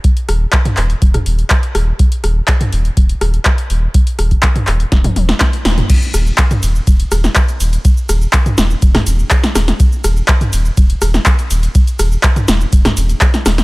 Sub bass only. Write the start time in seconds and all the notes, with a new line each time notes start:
0.28 D#1
0.77 D#1
1.02 D#1
1.26 D#1
1.75 D#1
2.24 D#1
2.72 D#1
2.97 D#1
3.21 D#1
3.70 D#1
4.19 D#1
4.67 D#1
4.92 D#1
5.16 D#1
5.65 D#1
6.14 D#1
6.63 D#1
6.87 D#1
7.11 D#1
7.60 D#1
8.09 D#1
8.58 D#1
8.82 D#1
9.06 D#1
9.55 D#1
10.04 D#1
10.53 D#1
10.77 D#1
11.02 D#1
11.51 D#1
11.99 D#1
12.48 D#1
12.73 D#1
12.97 D#1
13.46 D#1